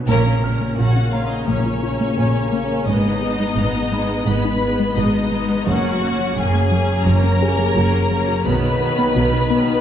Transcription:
0.00 0.11 F#5 soft
0.08 0.67 A#1 medium
0.08 0.67 A#2 medium
0.08 2.84 C#3 medium
0.08 2.83 A#3 medium
0.08 0.19 A#3 medium
0.08 0.41 C#4 medium
0.08 0.74 A#4 medium
0.08 0.74 A#5 medium
0.26 0.37 C#4 medium
0.44 0.78 C#4 soft
0.44 0.54 A#4 medium
0.44 2.49 F6 soft
0.61 0.72 A#3 medium
0.77 1.37 A#1 medium
0.77 1.37 A#2 medium
0.77 1.12 C#4 soft
0.77 0.89 F4 soft
0.77 1.13 F#4 soft
0.77 1.12 F#5 medium
0.96 1.06 C#4 medium
1.12 1.24 A#3 medium
1.12 1.47 C#4 soft
1.12 1.30 F4 soft
1.12 1.30 F5 medium
1.12 3.18 A#5 soft
1.30 1.48 D#4 soft
1.30 1.48 D#5 medium
1.46 2.07 A#1 medium
1.46 2.07 A#2 medium
1.46 1.59 A#3 medium
1.46 2.87 C#4 medium
1.46 1.82 C#4 soft
1.46 2.84 C#5 medium
1.66 1.76 F4 medium
1.83 2.17 C#4 soft
1.83 1.94 F4 medium
2.01 2.11 A#3 medium
2.17 2.76 A#1 medium
2.17 2.77 A#2 medium
2.17 2.51 C#4 soft
2.17 2.28 A#4 medium
2.17 4.23 G#5 soft
2.35 2.46 C#4 soft
2.53 2.63 A#3 medium
2.53 2.87 C#4 soft
2.70 2.80 A#4 soft
2.87 3.46 G#1 medium
2.87 3.46 G#2 medium
2.87 2.98 G#3 medium
2.87 3.21 G#3 soft
2.87 5.63 G#3 medium
2.87 3.21 B3 soft
2.87 5.67 B3 medium
2.87 4.27 D#4 medium
2.87 4.24 D#5 medium
3.05 3.15 B3 medium
3.22 3.56 G#3 soft
3.22 3.56 B3 soft
3.22 3.33 G#4 medium
3.40 3.50 G#3 medium
3.57 4.16 G#1 medium
3.57 4.16 G#2 medium
3.57 3.90 G#3 soft
3.57 3.91 B3 soft
3.57 3.68 D#4 medium
3.75 3.85 B3 medium
3.92 4.25 G#3 soft
3.92 4.03 G#3 medium
3.92 4.25 B3 soft
3.92 5.98 B5 soft
4.26 4.86 G#1 medium
4.26 4.86 G#2 medium
4.26 4.60 G#3 soft
4.26 4.38 G#3 medium
4.26 4.60 B3 soft
4.26 4.95 B4 medium
4.26 4.97 B5 medium
4.45 4.55 D#4 medium
4.61 4.95 G#3 soft
4.61 4.95 B3 soft
4.61 4.73 D#4 medium
4.80 4.90 G#3 medium
4.96 5.55 G#1 medium
4.96 5.56 G#2 medium
4.96 5.31 G#3 soft
4.96 5.31 B3 soft
4.96 5.65 D#4 medium
4.96 5.08 G#4 soft
4.96 5.67 D#5 medium
5.14 5.25 B3 soft
5.32 5.66 G#3 soft
5.32 5.42 G#3 medium
5.32 5.66 B3 soft
5.50 5.60 G#4 soft
5.66 6.25 F#1 medium
5.66 6.25 F#2 medium
5.66 5.77 F#3 medium
5.66 9.81 F#3 medium
5.66 6.01 A#3 medium
5.66 8.29 C#4 medium
5.66 6.01 C#4 medium
5.66 6.37 F#4 medium
5.66 6.35 F#5 medium
5.84 5.94 A#3 medium
6.02 6.36 A#3 soft
6.02 6.36 C#4 soft
6.02 6.12 F#4 soft
6.19 6.30 F#3 medium
6.36 6.95 F#1 medium
6.36 6.95 F#2 medium
6.36 6.71 A#3 soft
6.36 6.47 C#4 medium
6.36 6.71 C#4 soft
6.36 7.05 G#4 medium
6.36 7.06 G#5 medium
6.54 6.65 A#3 medium
6.72 6.82 F#3 medium
6.72 7.06 A#3 soft
6.72 7.06 C#4 soft
7.06 7.65 F#1 medium
7.06 7.65 F#2 medium
7.06 7.17 F#3 medium
7.06 7.40 A#3 soft
7.06 7.40 C#4 medium
7.06 8.46 A#4 medium
7.06 8.46 A#5 medium
7.24 7.34 C#4 medium
7.41 7.75 A#3 soft
7.41 7.75 C#4 soft
7.41 7.52 C#4 medium
7.41 9.47 G#4 soft
7.41 9.47 G#5 soft
7.58 7.69 F#3 medium
7.75 8.34 F#1 medium
7.75 8.35 F#2 medium
7.75 8.10 A#3 medium
7.75 8.10 C#4 soft
7.75 7.86 F#4 medium
7.93 8.04 A#3 soft
8.11 8.21 F#3 medium
8.11 8.45 A#3 soft
8.11 8.45 C#4 soft
8.28 8.38 F#4 medium
8.45 9.04 B1 medium
8.45 9.05 B2 medium
8.45 8.79 D#3 medium
8.45 8.56 B3 medium
8.45 8.79 B3 medium
8.45 9.81 D#4 medium
8.45 9.81 B4 medium
8.45 9.81 B5 medium
8.63 8.74 D#4 medium
8.81 9.15 D#3 medium
8.81 9.14 B3 soft
8.81 8.91 B4 medium
8.99 9.09 B3 medium
9.15 9.74 B1 medium
9.15 9.75 B2 medium
9.15 9.49 D#3 medium
9.15 9.49 B3 medium
9.15 9.26 F#4 medium
9.33 9.44 D#4 medium
9.50 9.81 D#3 soft
9.50 9.81 B3 medium
9.50 9.61 B3 medium

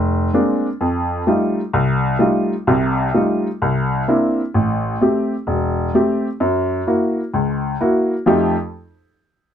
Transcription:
0.00 0.27 F1 medium
0.34 0.66 G#3 medium
0.34 0.66 A#3 soft
0.34 0.66 C4 soft
0.34 0.66 D4 medium
0.81 1.21 F2 medium
1.27 1.59 G3 soft
1.27 1.59 A3 soft
1.27 1.60 D#4 soft
1.27 1.60 F4 medium
1.73 2.14 C2 medium
2.19 2.52 G3 medium
2.19 2.52 A3 soft
2.19 2.52 D#4 soft
2.19 2.52 F4 medium
2.67 3.07 C2 medium
2.67 3.08 C3 medium
3.14 3.46 G3 soft
3.14 3.46 A3 soft
3.14 3.46 D#4 soft
3.14 3.47 F4 medium
3.62 4.01 C2 medium
4.08 4.40 A#3 medium
4.08 4.40 C4 medium
4.08 4.40 D4 soft
4.08 4.40 E4 medium
4.54 4.94 A1 medium
5.01 5.33 A3 soft
5.01 5.33 C4 soft
5.01 5.34 G4 medium
5.47 5.87 E1 medium
5.94 6.26 A3 medium
5.94 6.27 C4 soft
5.94 6.27 G4 medium
6.40 6.81 F#2 medium
6.87 7.20 A#3 medium
6.87 7.19 E4 soft
6.87 7.20 F#4 medium
7.34 7.74 C#2 medium
7.81 8.13 A#3 medium
7.81 8.13 E4 soft
7.81 8.13 F#4 medium
8.26 8.54 F2 medium
8.26 8.54 F3 medium
8.26 8.54 A3 medium
8.26 8.55 D#4 medium
8.26 8.55 G4 medium

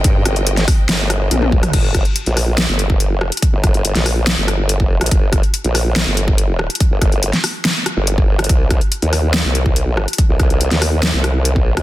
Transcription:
0.00 1.69 C3 medium
0.00 1.69 C4 medium
0.00 1.69 D#5 medium
0.00 1.69 G5 medium
0.04 0.24 G2 loud
0.04 kick loud
0.04 closed hi-hat medium
0.25 0.66 G1 loud
0.25 cross-stick medium
0.25 closed hi-hat medium
0.36 closed hi-hat soft
0.47 closed hi-hat medium
0.57 snare soft
0.57 closed hi-hat soft
0.68 kick loud
0.68 cross-stick medium
0.68 open hi-hat loud
0.89 1.29 G1 loud
0.89 snare loud
0.89 closed hi-hat medium
1.10 cross-stick medium
1.10 closed hi-hat medium
1.31 1.72 A#1 loud
1.31 closed hi-hat medium
1.31 high tom medium
1.42 high tom medium
1.52 kick medium
1.63 cross-stick medium
1.63 closed hi-hat medium
1.63 mid tom medium
1.73 2.04 G1 loud
1.73 kick loud
1.73 closed hi-hat medium
1.73 crash loud
1.95 kick loud
1.95 cross-stick medium
1.95 closed hi-hat medium
2.05 closed hi-hat soft
2.16 closed hi-hat medium
2.26 2.67 A#1 loud
2.26 closed hi-hat soft
2.37 cross-stick medium
2.37 open hi-hat loud
2.58 snare loud
2.58 closed hi-hat medium
2.69 3.13 G1 loud
2.79 closed hi-hat medium
2.90 kick medium
3.00 closed hi-hat medium
3.13 3.30 F#1 loud
3.21 cross-stick medium
3.32 closed hi-hat medium
3.37 closed hi-hat medium
3.42 kick loud
3.42 closed hi-hat medium
3.53 3.62 G1 medium
3.64 3.94 G1 loud
3.64 kick loud
3.64 cross-stick medium
3.64 closed hi-hat medium
3.74 closed hi-hat soft
3.85 closed hi-hat medium
3.95 4.36 A#1 loud
3.95 snare soft
3.95 closed hi-hat soft
4.06 cross-stick soft
4.06 open hi-hat medium
4.27 snare loud
4.27 closed hi-hat medium
4.38 4.82 G1 loud
4.48 cross-stick medium
4.48 closed hi-hat medium
4.69 closed hi-hat medium
4.80 4.99 F#1 loud
4.80 kick medium
5.01 5.10 A#1 loud
5.01 cross-stick medium
5.01 closed hi-hat medium
5.06 closed hi-hat medium
5.11 5.42 G1 loud
5.11 kick loud
5.11 closed hi-hat medium
5.33 kick loud
5.33 cross-stick medium
5.33 closed hi-hat medium
5.43 closed hi-hat soft
5.54 closed hi-hat medium
5.64 6.05 A#1 loud
5.64 closed hi-hat soft
5.75 cross-stick medium
5.75 open hi-hat medium
5.96 snare loud
5.96 closed hi-hat medium
6.07 6.68 G1 loud
6.17 closed hi-hat medium
6.28 kick medium
6.38 closed hi-hat medium
6.59 cross-stick medium
6.70 closed hi-hat medium
6.75 closed hi-hat medium
6.80 kick loud
6.80 closed hi-hat medium
6.91 7.00 G1 loud
7.02 7.32 G1 loud
7.02 kick loud
7.02 cross-stick medium
7.02 closed hi-hat medium
7.12 closed hi-hat soft
7.23 closed hi-hat medium
7.33 snare soft
7.33 closed hi-hat soft
7.44 cross-stick medium
7.44 open hi-hat medium
7.65 snare loud
7.65 closed hi-hat medium
7.86 cross-stick medium
7.86 closed hi-hat medium
7.97 8.48 G1 loud
8.07 closed hi-hat medium
8.18 kick medium
8.39 cross-stick medium
8.39 closed hi-hat soft
8.44 closed hi-hat medium
8.49 8.80 C2 loud
8.49 kick loud
8.49 closed hi-hat medium
8.71 kick loud
8.71 cross-stick medium
8.71 closed hi-hat medium
8.81 closed hi-hat soft
8.92 closed hi-hat medium
9.02 9.43 D#2 loud
9.02 closed hi-hat soft
9.13 cross-stick medium
9.13 open hi-hat medium
9.34 snare loud
9.34 closed hi-hat medium
9.45 10.06 C2 loud
9.55 closed hi-hat medium
9.66 kick medium
9.76 closed hi-hat medium
9.97 cross-stick medium
10.08 closed hi-hat soft
10.13 closed hi-hat medium
10.18 kick loud
10.18 closed hi-hat medium
10.29 10.38 C2 loud
10.40 10.70 C2 loud
10.40 kick loud
10.40 cross-stick medium
10.40 closed hi-hat medium
10.50 closed hi-hat soft
10.61 closed hi-hat medium
10.71 11.12 D#2 loud
10.71 snare soft
10.71 closed hi-hat soft
10.82 cross-stick medium
10.82 open hi-hat medium
11.03 snare loud
11.03 closed hi-hat medium
11.14 11.58 C2 loud
11.24 cross-stick medium
11.24 closed hi-hat medium
11.45 closed hi-hat medium
11.56 11.75 B1 loud
11.56 kick medium
11.77 11.82 D#2 loud
11.77 cross-stick medium
11.77 closed hi-hat soft

